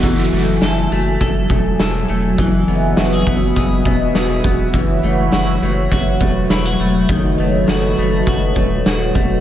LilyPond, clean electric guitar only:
\new Staff \with { instrumentName = "Clean electric guitar" } { \time 4/4 \key fis \dorian \tempo 4 = 102 e8 a8 a'8 a8 a'8 a8 a'8 a8 | e8 b8 fis'16 gis'16 b8 gis'8 b8 gis'8 b8 | e8 a8 fis'8 a8 fis'8 a8 e'16 fis'16 a8 | dis8 a8 fis'8 a8 fis'8 a8 fis'8 a8 | }